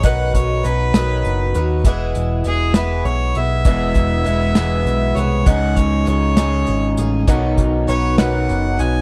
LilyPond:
<<
  \new Staff \with { instrumentName = "Harmonica" } { \time 6/8 \key e \major \tempo 4. = 66 fis''8 cis''8 b'2 | r4 gis'8 b'8 cis''8 e''8~ | e''2~ e''8 cis''8 | fis''8 cis''8 cis''2 |
r4 cis''8 fis''4 gis''8 | }
  \new Staff \with { instrumentName = "Twelve-string acoustic guitar" } { \time 6/8 \key e \major <b, dis fis cis' dis' b'>4 <fis cis' dis' b'>8 <b, dis fis cis' dis' b'>4 <fis cis' dis' b'>8 | <e gis b e' gis'>4 <gis b e' gis'>8 <e gis b e' gis'>4 <b e' gis'>8 | <e gis b e' gis'>4 <gis b e' gis'>8 <e gis b e' gis'>4 <b e' gis'>8 | <cis gis cis' dis' gis'>4 <gis cis' dis' gis'>8 <cis gis cis' dis' gis'>4 <cis' dis' gis'>8 |
<b, dis fis cis' dis' b'>4 <fis cis' dis' b'>8 <b, dis fis cis' dis' b'>4 <fis cis' dis' b'>8 | }
  \new Staff \with { instrumentName = "Clean electric guitar" } { \time 6/8 \key e \major r2. | r2. | <e, b, e gis b e'>4. <e, b, e gis b e'>4. | <cis gis cis' dis' gis'>4. <cis gis cis' dis' gis'>4. |
<b dis' fis' cis''>4. <b dis' fis' cis''>4. | }
  \new Staff \with { instrumentName = "Picked electric bass" } { \clef bass \time 6/8 \key e \major b,,8 b,,8 b,,8 b,,8 fis,,8 dis,8 | e,,8 e,,8 e,,4 b,,8 b,,8 | e,,8 e,,8 e,,8 e,,8 b,,8 c,8 | cis,8 cis,8 cis,4 gis,,8 a,,8 |
b,,8 b,,8 b,,8 b,,8 fis,,8 b,,8 | }
  \new DrumStaff \with { instrumentName = "Drums" } \drummode { \time 6/8 <hh bd>8 <hh bd>8 hh8 <hh sn>8 hh8 hh8 | <hh bd>8 hh8 hh8 <hh sn>8 hh8 hh8 | <hh bd>8 <hh bd>8 hh8 <hh sn>8 hh8 hh8 | <hh bd>8 <hh bd>8 hh8 <hh sn>8 hh8 hh8 |
<hh bd>8 <hh bd>8 hh8 <hh sn>8 hh8 hh8 | }
>>